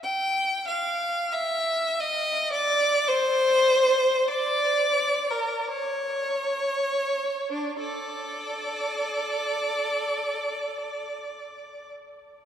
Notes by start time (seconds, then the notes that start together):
0.03 G5
0.68 F5
1.32 E5
2.00 D#5
2.53 D5
3.08 C5
4.28 D5
5.30 A#4
5.68 C#5
7.52 D4
7.80 A4 D5